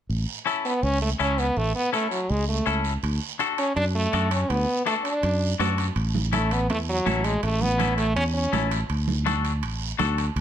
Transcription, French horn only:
0.66 0.85 B3 medium
0.83 1.01 C#4 medium
1.02 1.10 A3 medium
1.21 1.40 C#4 medium
1.39 1.59 B3 medium
1.58 1.75 A3 medium
1.75 1.92 B3 medium
1.93 2.10 A3 medium
2.11 2.32 F#3 medium
2.30 2.48 G#3 medium
2.49 2.83 A3 medium
3.59 3.76 C#4 medium
3.76 3.85 D4 medium
3.95 4.29 A3 medium
4.31 4.51 C#4 medium
4.50 4.86 B3 medium
4.86 4.95 A3 medium
5.04 5.56 D4 medium
6.34 6.54 A3 medium
6.53 6.70 B3 medium
6.70 6.78 A3 medium
6.89 7.26 F#3 medium
7.24 7.43 G#3 medium
7.43 7.63 A3 medium
7.62 7.97 B3 loud
7.97 8.15 A3 medium
8.16 8.24 C#4 loud
8.34 8.68 C#4 medium

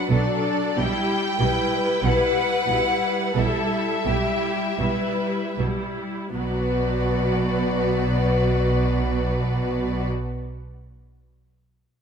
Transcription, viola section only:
0.11 0.76 F#3 soft
0.11 0.77 D4 soft
0.79 1.39 G3 soft
0.79 1.39 E4 soft
1.40 2.01 G3 soft
1.40 2.01 E4 soft
2.04 2.66 G3 soft
2.04 2.66 E4 soft
2.67 3.33 G3 soft
2.67 3.33 E4 soft
3.35 4.04 G3 soft
3.35 4.04 E4 soft
4.05 4.77 G3 soft
4.05 4.77 E4 soft
4.78 5.56 G3 soft
4.78 5.56 E4 soft
5.59 6.32 G3 soft
5.59 6.32 E4 soft
6.33 10.06 F#3 soft
6.33 10.06 B3 soft

